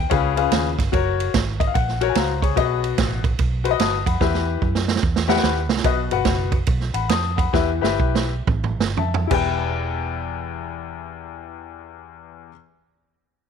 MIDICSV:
0, 0, Header, 1, 4, 480
1, 0, Start_track
1, 0, Key_signature, 1, "minor"
1, 0, Tempo, 409836
1, 1087, Time_signature, 4, 2, 24, 8
1, 7325, Tempo, 421941
1, 8285, Tempo, 448096
1, 9245, Tempo, 487805
1, 10205, Tempo, 530973
1, 10685, Tempo, 548446
1, 14184, End_track
2, 0, Start_track
2, 0, Title_t, "Upright piano"
2, 0, Program_c, 0, 0
2, 0, Note_on_c, 0, 79, 65
2, 115, Note_on_c, 0, 61, 101
2, 126, Note_on_c, 0, 65, 86
2, 130, Note_on_c, 0, 68, 94
2, 131, Note_on_c, 0, 49, 80
2, 135, Note_on_c, 0, 77, 105
2, 136, Note_on_c, 0, 71, 79
2, 368, Note_off_c, 0, 61, 0
2, 374, Note_off_c, 0, 65, 0
2, 376, Note_off_c, 0, 68, 0
2, 379, Note_off_c, 0, 71, 0
2, 379, Note_off_c, 0, 77, 0
2, 411, Note_off_c, 0, 79, 0
2, 425, Note_on_c, 0, 61, 89
2, 434, Note_on_c, 0, 68, 85
2, 435, Note_on_c, 0, 65, 82
2, 444, Note_on_c, 0, 71, 77
2, 447, Note_on_c, 0, 77, 100
2, 791, Note_off_c, 0, 61, 0
2, 795, Note_off_c, 0, 68, 0
2, 796, Note_off_c, 0, 65, 0
2, 800, Note_off_c, 0, 71, 0
2, 802, Note_off_c, 0, 77, 0
2, 872, Note_off_c, 0, 49, 0
2, 1078, Note_on_c, 0, 66, 88
2, 1088, Note_on_c, 0, 70, 78
2, 1102, Note_on_c, 0, 73, 99
2, 1609, Note_off_c, 0, 66, 0
2, 1614, Note_off_c, 0, 70, 0
2, 1621, Note_off_c, 0, 73, 0
2, 1873, Note_on_c, 0, 75, 70
2, 1954, Note_off_c, 0, 75, 0
2, 1960, Note_on_c, 0, 77, 76
2, 2040, Note_off_c, 0, 77, 0
2, 2041, Note_on_c, 0, 78, 81
2, 2352, Note_on_c, 0, 66, 95
2, 2364, Note_on_c, 0, 70, 84
2, 2371, Note_on_c, 0, 73, 106
2, 2412, Note_off_c, 0, 78, 0
2, 2454, Note_on_c, 0, 80, 73
2, 2525, Note_on_c, 0, 82, 72
2, 2528, Note_off_c, 0, 80, 0
2, 2528, Note_on_c, 0, 77, 70
2, 2531, Note_off_c, 0, 70, 0
2, 2534, Note_off_c, 0, 73, 0
2, 2535, Note_on_c, 0, 72, 65
2, 2715, Note_off_c, 0, 66, 0
2, 2814, Note_off_c, 0, 82, 0
2, 2822, Note_off_c, 0, 77, 0
2, 2826, Note_off_c, 0, 72, 0
2, 2834, Note_on_c, 0, 85, 75
2, 2839, Note_on_c, 0, 73, 74
2, 2846, Note_on_c, 0, 68, 62
2, 2994, Note_off_c, 0, 85, 0
2, 2998, Note_on_c, 0, 66, 89
2, 3010, Note_on_c, 0, 47, 82
2, 3010, Note_on_c, 0, 71, 83
2, 3018, Note_on_c, 0, 75, 106
2, 3294, Note_off_c, 0, 73, 0
2, 3298, Note_off_c, 0, 68, 0
2, 3529, Note_off_c, 0, 66, 0
2, 3535, Note_off_c, 0, 71, 0
2, 3539, Note_off_c, 0, 75, 0
2, 3751, Note_off_c, 0, 47, 0
2, 4264, Note_on_c, 0, 66, 90
2, 4273, Note_on_c, 0, 71, 84
2, 4281, Note_on_c, 0, 72, 80
2, 4320, Note_off_c, 0, 72, 0
2, 4344, Note_on_c, 0, 75, 103
2, 4456, Note_on_c, 0, 87, 73
2, 4462, Note_on_c, 0, 81, 64
2, 4630, Note_off_c, 0, 66, 0
2, 4634, Note_off_c, 0, 71, 0
2, 4669, Note_off_c, 0, 75, 0
2, 4745, Note_off_c, 0, 87, 0
2, 4749, Note_off_c, 0, 81, 0
2, 4758, Note_on_c, 0, 83, 67
2, 4761, Note_on_c, 0, 78, 59
2, 4922, Note_on_c, 0, 67, 80
2, 4931, Note_on_c, 0, 52, 75
2, 4932, Note_on_c, 0, 71, 83
2, 4936, Note_on_c, 0, 76, 88
2, 5212, Note_off_c, 0, 83, 0
2, 5214, Note_off_c, 0, 78, 0
2, 5449, Note_off_c, 0, 67, 0
2, 5455, Note_off_c, 0, 71, 0
2, 5457, Note_off_c, 0, 76, 0
2, 5670, Note_off_c, 0, 52, 0
2, 6181, Note_on_c, 0, 67, 96
2, 6192, Note_on_c, 0, 71, 82
2, 6194, Note_on_c, 0, 76, 78
2, 6200, Note_on_c, 0, 78, 105
2, 6273, Note_off_c, 0, 76, 0
2, 6363, Note_on_c, 0, 83, 69
2, 6547, Note_off_c, 0, 67, 0
2, 6553, Note_off_c, 0, 71, 0
2, 6557, Note_off_c, 0, 78, 0
2, 6809, Note_off_c, 0, 83, 0
2, 6842, Note_on_c, 0, 66, 88
2, 6851, Note_on_c, 0, 47, 81
2, 6851, Note_on_c, 0, 71, 77
2, 6859, Note_on_c, 0, 75, 91
2, 7010, Note_off_c, 0, 66, 0
2, 7014, Note_off_c, 0, 71, 0
2, 7018, Note_off_c, 0, 75, 0
2, 7159, Note_on_c, 0, 66, 77
2, 7168, Note_on_c, 0, 71, 81
2, 7179, Note_on_c, 0, 78, 95
2, 7589, Note_off_c, 0, 47, 0
2, 7659, Note_off_c, 0, 66, 0
2, 7663, Note_off_c, 0, 71, 0
2, 7668, Note_off_c, 0, 78, 0
2, 8104, Note_on_c, 0, 83, 70
2, 8108, Note_on_c, 0, 78, 61
2, 8273, Note_off_c, 0, 83, 0
2, 8275, Note_off_c, 0, 78, 0
2, 8280, Note_on_c, 0, 87, 81
2, 8289, Note_on_c, 0, 81, 64
2, 8570, Note_off_c, 0, 87, 0
2, 8575, Note_off_c, 0, 81, 0
2, 8578, Note_on_c, 0, 83, 65
2, 8583, Note_on_c, 0, 78, 62
2, 8747, Note_on_c, 0, 67, 86
2, 8754, Note_on_c, 0, 52, 84
2, 8756, Note_on_c, 0, 71, 83
2, 8762, Note_on_c, 0, 76, 100
2, 8919, Note_off_c, 0, 67, 0
2, 8923, Note_off_c, 0, 71, 0
2, 8927, Note_off_c, 0, 76, 0
2, 9041, Note_off_c, 0, 83, 0
2, 9043, Note_off_c, 0, 78, 0
2, 9052, Note_on_c, 0, 67, 86
2, 9059, Note_on_c, 0, 71, 83
2, 9069, Note_on_c, 0, 76, 95
2, 9504, Note_off_c, 0, 52, 0
2, 9562, Note_off_c, 0, 67, 0
2, 9565, Note_off_c, 0, 71, 0
2, 9570, Note_off_c, 0, 76, 0
2, 10210, Note_on_c, 0, 81, 68
2, 10215, Note_on_c, 0, 76, 61
2, 10479, Note_on_c, 0, 64, 82
2, 10499, Note_off_c, 0, 81, 0
2, 10499, Note_on_c, 0, 67, 76
2, 10502, Note_off_c, 0, 76, 0
2, 10513, Note_on_c, 0, 40, 90
2, 10520, Note_on_c, 0, 71, 76
2, 10539, Note_on_c, 0, 79, 94
2, 13276, Note_off_c, 0, 64, 0
2, 13296, Note_off_c, 0, 67, 0
2, 13309, Note_off_c, 0, 40, 0
2, 13316, Note_off_c, 0, 71, 0
2, 13335, Note_off_c, 0, 79, 0
2, 14184, End_track
3, 0, Start_track
3, 0, Title_t, "Fingered electric bass"
3, 0, Program_c, 1, 33
3, 128, Note_on_c, 1, 37, 106
3, 535, Note_off_c, 1, 37, 0
3, 603, Note_on_c, 1, 39, 99
3, 868, Note_off_c, 1, 39, 0
3, 919, Note_on_c, 1, 31, 86
3, 1063, Note_off_c, 1, 31, 0
3, 1084, Note_on_c, 1, 30, 114
3, 1494, Note_off_c, 1, 30, 0
3, 1568, Note_on_c, 1, 32, 94
3, 1976, Note_off_c, 1, 32, 0
3, 2052, Note_on_c, 1, 34, 95
3, 2458, Note_off_c, 1, 34, 0
3, 2525, Note_on_c, 1, 37, 99
3, 3009, Note_off_c, 1, 37, 0
3, 3009, Note_on_c, 1, 35, 104
3, 3416, Note_off_c, 1, 35, 0
3, 3486, Note_on_c, 1, 33, 108
3, 3894, Note_off_c, 1, 33, 0
3, 3969, Note_on_c, 1, 35, 96
3, 4376, Note_off_c, 1, 35, 0
3, 4444, Note_on_c, 1, 31, 97
3, 4708, Note_off_c, 1, 31, 0
3, 4761, Note_on_c, 1, 41, 93
3, 4903, Note_off_c, 1, 41, 0
3, 4929, Note_on_c, 1, 40, 99
3, 5335, Note_off_c, 1, 40, 0
3, 5412, Note_on_c, 1, 42, 104
3, 5817, Note_off_c, 1, 42, 0
3, 5891, Note_on_c, 1, 40, 101
3, 6296, Note_off_c, 1, 40, 0
3, 6364, Note_on_c, 1, 39, 88
3, 6679, Note_off_c, 1, 39, 0
3, 6679, Note_on_c, 1, 36, 87
3, 6821, Note_off_c, 1, 36, 0
3, 6843, Note_on_c, 1, 35, 102
3, 7108, Note_off_c, 1, 35, 0
3, 7164, Note_on_c, 1, 31, 88
3, 7305, Note_off_c, 1, 31, 0
3, 7324, Note_on_c, 1, 30, 92
3, 7729, Note_off_c, 1, 30, 0
3, 7804, Note_on_c, 1, 35, 111
3, 8068, Note_off_c, 1, 35, 0
3, 8105, Note_on_c, 1, 33, 95
3, 8256, Note_off_c, 1, 33, 0
3, 8271, Note_on_c, 1, 41, 93
3, 8678, Note_off_c, 1, 41, 0
3, 8755, Note_on_c, 1, 40, 118
3, 9022, Note_off_c, 1, 40, 0
3, 9061, Note_on_c, 1, 31, 86
3, 9214, Note_off_c, 1, 31, 0
3, 9247, Note_on_c, 1, 35, 98
3, 9644, Note_off_c, 1, 35, 0
3, 9716, Note_on_c, 1, 33, 102
3, 9983, Note_off_c, 1, 33, 0
3, 10024, Note_on_c, 1, 31, 94
3, 10177, Note_off_c, 1, 31, 0
3, 10203, Note_on_c, 1, 41, 98
3, 10464, Note_off_c, 1, 41, 0
3, 10513, Note_on_c, 1, 28, 90
3, 13309, Note_off_c, 1, 28, 0
3, 14184, End_track
4, 0, Start_track
4, 0, Title_t, "Drums"
4, 126, Note_on_c, 9, 51, 71
4, 130, Note_on_c, 9, 36, 115
4, 243, Note_off_c, 9, 51, 0
4, 248, Note_off_c, 9, 36, 0
4, 435, Note_on_c, 9, 51, 58
4, 553, Note_off_c, 9, 51, 0
4, 604, Note_on_c, 9, 51, 80
4, 613, Note_on_c, 9, 38, 117
4, 721, Note_off_c, 9, 51, 0
4, 731, Note_off_c, 9, 38, 0
4, 921, Note_on_c, 9, 36, 99
4, 929, Note_on_c, 9, 38, 36
4, 931, Note_on_c, 9, 51, 62
4, 1038, Note_off_c, 9, 36, 0
4, 1046, Note_off_c, 9, 38, 0
4, 1048, Note_off_c, 9, 51, 0
4, 1089, Note_on_c, 9, 36, 111
4, 1093, Note_on_c, 9, 51, 69
4, 1206, Note_off_c, 9, 36, 0
4, 1211, Note_off_c, 9, 51, 0
4, 1406, Note_on_c, 9, 51, 67
4, 1523, Note_off_c, 9, 51, 0
4, 1569, Note_on_c, 9, 51, 78
4, 1571, Note_on_c, 9, 36, 93
4, 1572, Note_on_c, 9, 38, 106
4, 1686, Note_off_c, 9, 51, 0
4, 1688, Note_off_c, 9, 36, 0
4, 1689, Note_off_c, 9, 38, 0
4, 1876, Note_on_c, 9, 36, 112
4, 1883, Note_on_c, 9, 51, 59
4, 1994, Note_off_c, 9, 36, 0
4, 2000, Note_off_c, 9, 51, 0
4, 2051, Note_on_c, 9, 51, 70
4, 2053, Note_on_c, 9, 36, 107
4, 2168, Note_off_c, 9, 51, 0
4, 2170, Note_off_c, 9, 36, 0
4, 2207, Note_on_c, 9, 38, 34
4, 2324, Note_off_c, 9, 38, 0
4, 2356, Note_on_c, 9, 51, 59
4, 2473, Note_off_c, 9, 51, 0
4, 2522, Note_on_c, 9, 51, 86
4, 2531, Note_on_c, 9, 38, 127
4, 2639, Note_off_c, 9, 51, 0
4, 2649, Note_off_c, 9, 38, 0
4, 2840, Note_on_c, 9, 36, 100
4, 2850, Note_on_c, 9, 51, 63
4, 2957, Note_off_c, 9, 36, 0
4, 2967, Note_off_c, 9, 51, 0
4, 3009, Note_on_c, 9, 36, 111
4, 3011, Note_on_c, 9, 51, 72
4, 3127, Note_off_c, 9, 36, 0
4, 3128, Note_off_c, 9, 51, 0
4, 3323, Note_on_c, 9, 51, 69
4, 3440, Note_off_c, 9, 51, 0
4, 3488, Note_on_c, 9, 51, 77
4, 3491, Note_on_c, 9, 36, 96
4, 3491, Note_on_c, 9, 38, 108
4, 3605, Note_off_c, 9, 51, 0
4, 3608, Note_off_c, 9, 36, 0
4, 3608, Note_off_c, 9, 38, 0
4, 3796, Note_on_c, 9, 36, 109
4, 3799, Note_on_c, 9, 51, 53
4, 3913, Note_off_c, 9, 36, 0
4, 3916, Note_off_c, 9, 51, 0
4, 3966, Note_on_c, 9, 51, 72
4, 3972, Note_on_c, 9, 36, 110
4, 4083, Note_off_c, 9, 51, 0
4, 4089, Note_off_c, 9, 36, 0
4, 4276, Note_on_c, 9, 51, 58
4, 4393, Note_off_c, 9, 51, 0
4, 4445, Note_on_c, 9, 51, 88
4, 4455, Note_on_c, 9, 38, 127
4, 4562, Note_off_c, 9, 51, 0
4, 4572, Note_off_c, 9, 38, 0
4, 4760, Note_on_c, 9, 36, 99
4, 4765, Note_on_c, 9, 51, 64
4, 4877, Note_off_c, 9, 36, 0
4, 4882, Note_off_c, 9, 51, 0
4, 4929, Note_on_c, 9, 36, 115
4, 4929, Note_on_c, 9, 38, 61
4, 5046, Note_off_c, 9, 36, 0
4, 5046, Note_off_c, 9, 38, 0
4, 5087, Note_on_c, 9, 38, 49
4, 5204, Note_off_c, 9, 38, 0
4, 5410, Note_on_c, 9, 36, 90
4, 5527, Note_off_c, 9, 36, 0
4, 5565, Note_on_c, 9, 38, 72
4, 5683, Note_off_c, 9, 38, 0
4, 5719, Note_on_c, 9, 38, 86
4, 5805, Note_off_c, 9, 38, 0
4, 5805, Note_on_c, 9, 38, 70
4, 5892, Note_on_c, 9, 36, 112
4, 5922, Note_off_c, 9, 38, 0
4, 6009, Note_off_c, 9, 36, 0
4, 6044, Note_on_c, 9, 38, 84
4, 6161, Note_off_c, 9, 38, 0
4, 6196, Note_on_c, 9, 38, 103
4, 6281, Note_off_c, 9, 38, 0
4, 6281, Note_on_c, 9, 38, 81
4, 6365, Note_off_c, 9, 38, 0
4, 6365, Note_on_c, 9, 38, 112
4, 6482, Note_off_c, 9, 38, 0
4, 6669, Note_on_c, 9, 38, 117
4, 6755, Note_off_c, 9, 38, 0
4, 6755, Note_on_c, 9, 38, 83
4, 6842, Note_on_c, 9, 51, 74
4, 6844, Note_on_c, 9, 36, 109
4, 6872, Note_off_c, 9, 38, 0
4, 6959, Note_off_c, 9, 51, 0
4, 6962, Note_off_c, 9, 36, 0
4, 7156, Note_on_c, 9, 51, 65
4, 7273, Note_off_c, 9, 51, 0
4, 7318, Note_on_c, 9, 51, 73
4, 7321, Note_on_c, 9, 38, 101
4, 7326, Note_on_c, 9, 36, 100
4, 7432, Note_off_c, 9, 51, 0
4, 7435, Note_off_c, 9, 38, 0
4, 7440, Note_off_c, 9, 36, 0
4, 7626, Note_on_c, 9, 36, 109
4, 7626, Note_on_c, 9, 51, 53
4, 7740, Note_off_c, 9, 36, 0
4, 7740, Note_off_c, 9, 51, 0
4, 7793, Note_on_c, 9, 51, 71
4, 7802, Note_on_c, 9, 36, 113
4, 7907, Note_off_c, 9, 51, 0
4, 7916, Note_off_c, 9, 36, 0
4, 7952, Note_on_c, 9, 38, 36
4, 8065, Note_off_c, 9, 38, 0
4, 8106, Note_on_c, 9, 51, 64
4, 8220, Note_off_c, 9, 51, 0
4, 8279, Note_on_c, 9, 51, 88
4, 8289, Note_on_c, 9, 38, 127
4, 8387, Note_off_c, 9, 51, 0
4, 8396, Note_off_c, 9, 38, 0
4, 8587, Note_on_c, 9, 36, 103
4, 8596, Note_on_c, 9, 51, 58
4, 8695, Note_off_c, 9, 36, 0
4, 8703, Note_off_c, 9, 51, 0
4, 8755, Note_on_c, 9, 36, 108
4, 8755, Note_on_c, 9, 38, 61
4, 8862, Note_off_c, 9, 36, 0
4, 8862, Note_off_c, 9, 38, 0
4, 9080, Note_on_c, 9, 38, 73
4, 9187, Note_off_c, 9, 38, 0
4, 9247, Note_on_c, 9, 36, 96
4, 9345, Note_off_c, 9, 36, 0
4, 9400, Note_on_c, 9, 38, 88
4, 9499, Note_off_c, 9, 38, 0
4, 9716, Note_on_c, 9, 45, 90
4, 9717, Note_on_c, 9, 36, 112
4, 9814, Note_off_c, 9, 45, 0
4, 9816, Note_off_c, 9, 36, 0
4, 9877, Note_on_c, 9, 45, 90
4, 9976, Note_off_c, 9, 45, 0
4, 10042, Note_on_c, 9, 38, 112
4, 10140, Note_off_c, 9, 38, 0
4, 10206, Note_on_c, 9, 43, 95
4, 10296, Note_off_c, 9, 43, 0
4, 10360, Note_on_c, 9, 43, 116
4, 10451, Note_off_c, 9, 43, 0
4, 10509, Note_on_c, 9, 49, 94
4, 10512, Note_on_c, 9, 36, 102
4, 10599, Note_off_c, 9, 49, 0
4, 10603, Note_off_c, 9, 36, 0
4, 14184, End_track
0, 0, End_of_file